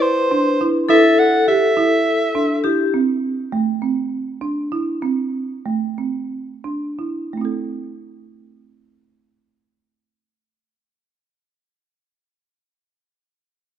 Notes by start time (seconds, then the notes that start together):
Already playing: E4 B4
0.02 C5
0.31 D4
0.61 E4
0.89 E4 A4 E5
1.19 F#5
1.48 G4 E5
1.77 E4
2.35 D4
2.64 E4 G4
2.94 C4
3.52 A3
3.82 C4
4.41 D4
4.72 E4
5.02 C4
5.66 A3
5.98 C4
6.64 D4
6.99 E4
7.33 A3
7.37 C4 E4
7.45 A4